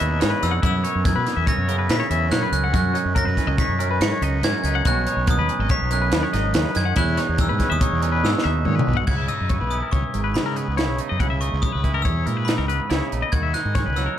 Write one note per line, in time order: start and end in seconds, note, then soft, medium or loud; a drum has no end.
0.00 0.20 D#2 medium
0.00 0.19 E2 medium
0.00 0.63 B2 medium
0.00 1.03 E3 medium
0.00 0.20 C#4 medium
0.00 0.41 D#4 medium
0.00 0.20 E5 medium
0.00 0.20 B5 medium
0.20 0.62 E2 medium
0.20 0.32 G#2 medium
0.20 0.63 C#4 medium
0.20 0.31 C#5 medium
0.20 snare loud
0.20 closed hi-hat medium
0.30 0.52 B4 medium
0.43 0.62 F2 medium
0.43 0.61 D#4 medium
0.43 0.64 E6 medium
0.43 snare soft
0.43 closed hi-hat medium
0.51 0.62 F#5 medium
0.62 2.29 F#2 medium
0.62 0.83 F#2 loud
0.62 1.25 B3 medium
0.62 0.84 E4 medium
0.62 1.08 E6 loud
0.62 kick loud
0.62 closed hi-hat medium
0.84 1.47 C#4 medium
0.84 1.04 C#5 medium
0.84 closed hi-hat medium
0.95 1.15 F#2 medium
1.04 3.15 F#3 medium
1.04 1.15 A#4 medium
1.04 1.49 G#6 medium
1.04 kick loud
1.04 snare soft
1.04 closed hi-hat medium
1.16 1.26 B2 medium
1.16 1.37 B4 medium
1.26 1.68 B3 medium
1.26 snare soft
1.26 closed hi-hat medium
1.36 1.47 E2 medium
1.36 1.46 E5 medium
1.46 2.11 C#4 medium
1.46 1.68 C#5 medium
1.46 1.87 A#6 medium
1.46 kick medium
1.46 closed hi-hat medium
1.58 1.87 F#2 medium
1.68 2.72 C#3 medium
1.68 2.29 B3 medium
1.68 1.78 A#4 medium
1.68 closed hi-hat medium
1.79 1.99 B4 medium
1.89 2.00 A#2 loud
1.89 2.34 B6 medium
1.89 snare loud
1.89 closed hi-hat medium
2.00 2.10 C#5 medium
2.10 2.30 E2 medium
2.10 2.52 C#4 medium
2.10 2.31 E5 medium
2.10 closed hi-hat medium
2.30 2.71 F#2 medium
2.30 2.42 A#2 medium
2.30 2.71 B3 medium
2.30 2.42 C#5 medium
2.30 2.52 F#6 medium
2.30 snare loud
2.30 closed hi-hat medium
2.43 2.64 B4 medium
2.52 2.72 C#2 medium
2.52 2.73 C#4 medium
2.52 2.74 F#6 medium
2.52 closed hi-hat medium
2.64 2.74 F#5 medium
2.72 3.78 F#2 medium
2.72 2.94 F#2 loud
2.72 3.37 C#4 medium
2.72 2.96 F#4 loud
2.72 3.14 F#6 loud
2.72 kick medium
2.72 closed hi-hat medium
2.94 3.59 D#4 medium
2.94 3.15 C#5 medium
2.94 closed hi-hat medium
3.05 3.25 F#2 medium
3.15 5.27 F#3 medium
3.15 3.25 A#4 medium
3.15 3.61 A#6 loud
3.15 kick loud
3.15 closed hi-hat medium
3.25 3.37 F#2 medium
3.25 3.47 B4 medium
3.37 3.80 C#4 medium
3.37 kick medium
3.37 snare soft
3.37 closed hi-hat medium
3.47 3.58 C#2 medium
3.47 3.58 D#5 medium
3.58 4.22 D#4 medium
3.58 3.80 C#5 medium
3.58 4.03 B6 loud
3.58 kick loud
3.58 snare soft
3.58 closed hi-hat medium
3.69 3.99 F#2 medium
3.79 4.42 F#2 medium
3.79 4.44 C#4 medium
3.79 3.90 A#4 medium
3.79 closed hi-hat medium
3.91 4.12 B4 medium
4.01 4.11 G#2 loud
4.01 4.41 C#7 loud
4.01 snare loud
4.01 closed hi-hat medium
4.12 4.23 C#5 medium
4.21 4.42 C#2 loud
4.21 4.65 D#4 medium
4.21 4.44 D#5 medium
4.21 closed hi-hat medium
4.43 4.83 F#2 medium
4.43 4.53 G#2 medium
4.43 4.86 C#4 medium
4.43 4.54 C#5 medium
4.43 4.62 G#6 loud
4.43 snare medium
4.43 closed hi-hat medium
4.54 4.75 B4 medium
4.64 4.84 C#2 medium
4.64 4.90 D#4 medium
4.64 4.84 G#6 medium
4.64 closed hi-hat medium
4.75 4.86 F#5 medium
4.85 5.05 B1 loud
4.85 5.91 B2 medium
4.85 5.49 C#4 medium
4.85 5.07 F#4 medium
4.85 5.30 F#6 loud
4.85 kick loud
4.85 closed hi-hat medium
5.07 5.71 D#4 medium
5.07 5.28 C#5 medium
5.07 closed hi-hat medium
5.17 5.37 B1 medium
5.27 6.94 F#3 medium
5.27 5.38 A#4 medium
5.27 5.69 D#6 medium
5.27 kick loud
5.27 closed hi-hat medium
5.38 5.48 D#2 medium
5.38 5.60 B4 medium
5.49 5.92 C#4 medium
5.49 closed hi-hat soft
5.59 5.69 G#1 loud
5.59 5.71 D#5 medium
5.69 6.34 D#4 medium
5.69 5.91 C#5 medium
5.69 5.80 B6 loud
5.69 kick loud
5.69 closed hi-hat medium
5.81 6.10 B1 medium
5.91 6.95 F#2 medium
5.91 6.97 C#4 medium
5.91 6.01 A#4 medium
5.91 6.31 F#6 medium
5.91 closed hi-hat medium
6.02 6.23 B4 medium
6.12 6.22 D#2 medium
6.12 snare loud
6.12 closed hi-hat medium
6.23 6.33 C#5 medium
6.33 6.53 G#1 loud
6.33 7.00 D#4 medium
6.33 6.54 D#5 medium
6.33 snare soft
6.33 closed hi-hat medium
6.54 6.64 D#2 loud
6.54 6.75 C#3 medium
6.54 6.65 C#5 medium
6.54 snare loud
6.54 closed hi-hat medium
6.65 6.86 B4 medium
6.75 6.96 F#2 medium
6.75 6.97 D#3 medium
6.75 6.96 G#6 loud
6.75 snare soft
6.75 closed hi-hat medium
6.85 6.96 F#5 medium
6.96 8.65 E2 medium
6.96 7.17 E2 loud
6.96 7.59 C#4 medium
6.96 7.18 E4 loud
6.96 7.37 F#6 loud
6.96 kick loud
6.96 closed hi-hat medium
7.17 7.81 D#4 medium
7.17 7.39 C#5 medium
7.17 snare soft
7.17 closed hi-hat medium
7.29 7.49 E2 medium
7.38 9.70 E3 medium
7.38 7.49 A#4 medium
7.38 7.73 E6 loud
7.38 kick loud
7.38 snare soft
7.38 closed hi-hat loud
7.49 7.60 G#2 medium
7.49 7.71 B4 medium
7.60 8.02 C#4 medium
7.60 kick medium
7.60 snare soft
7.60 closed hi-hat medium
7.70 7.81 D#2 loud
7.70 7.81 E5 medium
7.70 7.81 D#6 medium
7.81 8.44 D#4 medium
7.81 8.02 C#5 medium
7.81 8.25 C#6 medium
7.81 kick loud
7.81 closed hi-hat loud
7.92 8.22 E2 medium
8.02 8.86 B2 medium
8.02 9.06 C#4 medium
8.02 8.12 A#4 medium
8.02 closed hi-hat medium
8.12 8.33 B4 medium
8.24 8.34 G#2 loud
8.24 8.84 E6 medium
8.24 snare medium
8.33 8.44 C#5 medium
8.38 snare medium
8.44 8.65 D#2 medium
8.44 9.06 D#4 medium
8.44 8.65 E5 medium
8.65 8.76 G#2 loud
8.65 8.87 A#2 medium
8.65 8.75 C#5 medium
8.65 mid tom medium
8.75 8.97 B4 medium
8.79 mid tom loud
8.87 9.07 B1 medium
8.87 9.08 B2 medium
8.93 9.06 F#5 medium
8.93 floor tom medium
9.07 9.28 C#2 medium
9.07 9.72 C#3 medium
9.07 9.72 E4 medium
9.07 9.17 F#5 medium
9.07 9.30 G#6 medium
9.07 kick medium
9.07 crash medium
9.18 9.28 E5 medium
9.28 10.36 D#4 medium
9.28 9.50 D#5 medium
9.28 9.69 E6 medium
9.28 closed hi-hat medium
9.41 9.60 F#2 medium
9.49 10.56 B3 medium
9.49 9.60 C#5 medium
9.49 kick medium
9.49 closed hi-hat medium
9.61 9.81 B1 medium
9.61 9.82 B4 medium
9.71 11.82 E3 soft
9.71 10.77 E4 medium
9.71 9.80 D#6 medium
9.71 closed hi-hat soft
9.82 9.92 A#4 medium
9.91 10.03 C#2 medium
9.91 10.14 C#5 medium
9.91 10.36 C#6 medium
9.91 kick medium
9.91 closed hi-hat medium
10.14 10.37 G#1 medium
10.14 10.78 G#2 medium
10.14 10.23 A#4 medium
10.14 closed hi-hat medium
10.24 10.45 B4 medium
10.34 10.65 C#3 medium
10.34 11.00 D#4 soft
10.34 10.95 B5 medium
10.34 snare loud
10.34 closed hi-hat medium
10.46 10.56 A#4 medium
10.56 11.18 B3 soft
10.56 10.77 B4 medium
10.56 closed hi-hat medium
10.68 10.89 C#2 medium
10.77 11.18 C#3 medium
10.77 11.20 E4 medium
10.77 10.99 C#5 medium
10.77 snare medium
10.77 closed hi-hat medium
10.89 10.99 B1 medium
10.99 11.23 D#4 medium
10.99 closed hi-hat medium
11.09 11.20 F#2 medium
11.09 11.20 D#5 medium
11.20 11.50 C#2 medium
11.20 11.84 C#3 medium
11.20 11.83 E4 medium
11.20 11.30 F#5 medium
11.20 kick medium
11.20 closed hi-hat medium
11.30 11.41 E5 medium
11.41 12.48 D#4 soft
11.41 11.63 D#5 medium
11.41 11.63 C#6 medium
11.41 closed hi-hat medium
11.53 11.63 C#2 medium
11.62 11.72 C#5 medium
11.62 12.02 D#6 medium
11.62 kick medium
11.62 closed hi-hat medium
11.72 12.05 C#2 medium
11.72 11.94 B4 medium
11.84 13.33 E3 soft
11.84 12.89 E4 medium
11.84 kick medium
11.84 closed hi-hat soft
11.94 12.05 A#4 medium
12.02 12.25 E2 medium
12.02 12.26 C#5 medium
12.02 12.48 E6 medium
12.02 kick medium
12.02 closed hi-hat medium
12.26 12.90 G#2 medium
12.26 12.56 A#2 medium
12.26 12.37 A#4 medium
12.26 closed hi-hat medium
12.37 12.58 B4 medium
12.45 13.12 D#4 medium
12.45 13.06 B5 medium
12.45 snare loud
12.45 closed hi-hat medium
12.58 12.78 C#2 medium
12.58 12.68 A#4 medium
12.68 13.31 B3 soft
12.68 12.90 B4 medium
12.68 closed hi-hat medium
12.89 13.01 C#2 medium
12.89 13.30 C#3 medium
12.89 13.33 E4 medium
12.89 13.11 C#5 medium
12.89 snare medium
12.89 closed hi-hat medium
13.12 13.22 A#1 medium
13.12 13.55 D#4 medium
13.12 closed hi-hat medium
13.22 13.33 D#5 medium
13.32 13.53 D#2 medium
13.32 14.19 D#3 medium
13.32 13.97 F#4 medium
13.32 13.42 F#5 medium
13.32 13.52 G#6 loud
13.32 kick medium
13.32 closed hi-hat medium
13.43 13.54 E5 medium
13.54 14.19 D#4 soft
13.54 13.75 D#5 medium
13.54 13.94 F#6 medium
13.54 snare soft
13.54 closed hi-hat medium
13.65 13.85 G#2 medium
13.75 14.19 C#4 medium
13.75 13.86 C#5 medium
13.75 kick medium
13.75 snare soft
13.75 closed hi-hat medium
13.86 14.07 C#2 medium
13.86 14.06 B4 medium
13.96 14.19 F#3 medium
13.96 14.19 F#4 medium
13.96 14.19 E6 medium
13.96 snare soft
13.96 closed hi-hat soft
14.06 14.17 A#4 medium